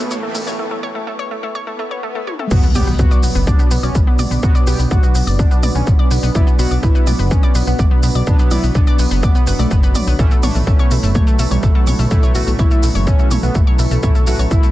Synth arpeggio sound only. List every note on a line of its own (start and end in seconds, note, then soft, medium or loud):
0.11 0.20 C#5 medium
0.23 0.31 A3 medium
0.35 0.40 A3 medium
0.47 0.55 C#5 medium
0.59 0.67 A3 medium
0.71 0.76 A3 medium
0.83 0.92 C#5 medium
0.95 1.04 A3 medium
1.07 1.12 A3 medium
1.19 1.27 C#5 medium
1.31 1.40 A3 medium
1.43 1.48 A3 medium
1.55 1.64 C#5 medium
1.67 1.75 A3 medium
1.79 1.84 A3 medium
1.91 1.99 C#5 medium
2.03 2.12 A3 medium
2.15 2.20 A3 medium
2.27 2.36 C#5 medium
2.39 2.48 A3 medium
2.51 2.60 B3 medium
2.63 2.68 B3 medium
2.75 2.84 D5 medium
2.87 2.96 B3 medium
2.99 3.04 B3 medium
3.11 3.20 D5 medium
3.23 3.32 B3 medium
3.35 3.40 B3 medium
3.47 3.56 D5 medium
3.59 3.68 B3 medium
3.71 3.76 B3 medium
3.83 3.92 D5 medium
3.95 4.04 B3 medium
4.07 4.12 B3 medium
4.19 4.27 D5 medium
4.31 4.39 B3 medium
4.43 4.48 B3 medium
4.55 4.63 D5 medium
4.67 4.75 B3 medium
4.79 4.84 B3 medium
4.91 5.00 D5 medium
5.03 5.12 B3 medium
5.15 5.20 B3 medium
5.27 5.36 D5 medium
5.39 5.47 B3 medium
5.51 5.56 B3 medium
5.63 5.72 D5 medium
5.75 5.83 B3 medium
5.87 5.92 B3 medium
5.99 6.07 D5 medium
6.11 6.19 B3 medium
6.23 6.28 B3 medium
6.35 6.43 D5 medium
6.47 6.55 B3 medium
6.59 6.64 B3 medium
6.71 6.79 D5 medium
6.83 6.91 B3 medium
6.95 7.00 B3 medium
7.07 7.15 D5 medium
7.19 7.27 B3 medium
7.31 7.36 B3 medium
7.43 7.51 D5 medium
7.55 7.63 B3 medium
7.67 7.72 B3 medium
7.79 7.88 D5 medium
7.91 7.99 B3 medium
8.03 8.08 B3 medium
8.15 8.24 D5 medium
8.27 8.36 B3 medium
8.39 8.44 B3 medium
8.51 8.60 D5 medium
8.63 8.72 B3 medium
8.75 8.80 B3 medium
8.87 8.96 D5 medium
8.99 9.08 B3 medium
9.11 9.16 B3 medium
9.23 9.32 D5 medium
9.35 9.44 B3 medium
9.47 9.52 B3 medium
9.59 9.68 D5 medium
9.71 9.80 B3 medium
9.83 9.88 B3 medium
9.95 10.04 D5 medium
10.07 10.16 B3 medium
10.19 10.28 A3 medium
10.31 10.36 A3 medium
10.43 10.52 C#5 medium
10.55 10.64 A3 medium
10.67 10.72 A3 medium
10.79 10.88 C#5 medium
10.91 11.00 A3 medium
11.03 11.08 A3 medium
11.15 11.24 C#5 medium
11.27 11.35 A3 medium
11.39 11.44 A3 medium
11.51 11.59 C#5 medium
11.63 11.72 A3 medium
11.75 11.80 A3 medium
11.87 11.96 C#5 medium
11.99 12.07 A3 medium
12.11 12.16 A3 medium
12.23 12.32 C#5 medium
12.35 12.44 A3 medium
12.47 12.52 A3 medium
12.59 12.68 C#5 medium
12.71 12.80 A3 medium
12.83 12.88 A3 medium
12.95 13.04 C#5 medium
13.07 13.16 A3 medium
13.19 13.24 A3 medium
13.31 13.40 C#5 medium
13.43 13.52 A3 medium
13.55 13.60 A3 medium
13.67 13.76 C#5 medium
13.79 13.88 A3 medium
13.91 13.96 A3 medium
14.03 14.12 C#5 medium
14.15 14.24 A3 medium
14.27 14.32 A3 medium
14.39 14.48 C#5 medium
14.51 14.60 A3 medium
14.63 14.68 A3 medium